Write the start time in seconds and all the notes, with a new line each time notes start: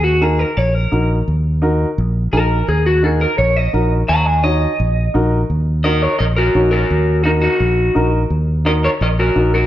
Already playing: D#2
0.04 F#4
0.21 D#4 F#4 G#4 A#4
0.39 A#4
0.57 A#1 C#5
0.74 A#4
0.92 A#1 D#4 F#4 A#4
1.28 D#2
1.62 D#4 F#4 A#4
1.98 A#1
2.33 A#1 D#4 F#4 A#4
2.68 D#2 G#4
2.86 F#4
3.03 D#4 F#4 G#4 A#4
3.21 A#4
3.38 A#1 C#5
3.56 D#5
3.73 A#1 D#4 F#4 A#4
4.08 D#2 F#5 A#5
4.26 D#5 G#5
4.43 D#4 F#4 C#5 D#5
4.80 A#1
5.14 A#1 D#4 F#4 A#4
5.50 D#2
5.84 D#4 F#4 A#4 D#5
6.02 A#4 C#5
6.19 A#1 A#4 D#5
6.36 F#4 A#4
6.55 A#1 D#4 F#4 C#5
6.71 F#4 A#4
6.90 D#2
7.24 D#4 F#4 A#4
7.42 D#4 F#4
7.60 A#1
7.95 A#1 D#4 F#4 A#4
8.30 D#2
8.65 D#4 F#4 A#4 D#5
8.84 A#4 C#5
9.01 A#1 A#4 D#5
9.19 F#4 A#4
9.35 A#1 D#4 F#4 A#4
9.54 F#4 A#4